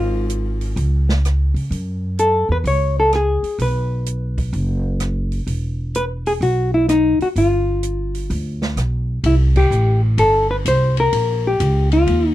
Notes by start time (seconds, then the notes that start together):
Already playing: G#1 F4
0.30 closed hi-hat
0.61 open hi-hat
0.76 C#2, open hi-hat
1.09 snare
1.25 cross-stick, closed hi-hat
1.54 C#3, open hi-hat
1.71 F#2, open hi-hat
2.19 A4, closed hi-hat
2.49 E2 B4
2.64 C#2 C#5, open hi-hat
3.00 A4
3.13 G#4, cross-stick, closed hi-hat
3.43 muted upright bass stroke, open hi-hat
3.59 B1 B4, open hi-hat
4.06 closed hi-hat
4.38 kick, open hi-hat
4.53 F#1, open hi-hat
5.00 cross-stick, closed hi-hat
5.32 open hi-hat
5.47 E1, open hi-hat
5.95 B4, closed hi-hat
6.26 G#4, open hi-hat
6.41 B1 F#4, open hi-hat
6.74 E4
6.89 D#4, cross-stick, closed hi-hat
7.19 F#4, muted upright bass stroke, open hi-hat
7.36 G1 F4, open hi-hat
7.83 closed hi-hat
8.14 open hi-hat
8.30 D2, open hi-hat
8.62 snare
8.76 B1, cross-stick, closed hi-hat
9.24 C2 E4, ride
9.56 G4, kick, crash
9.71 A1, hi-hat pedal
10.18 G1 A4, ride
10.51 B4
10.65 C2 C5, hi-hat pedal, ride
10.97 A#4, ride
11.13 A#1, ride
11.47 G4
11.60 C#2, hi-hat pedal, ride
11.91 F4, ride
12.07 D#2, ride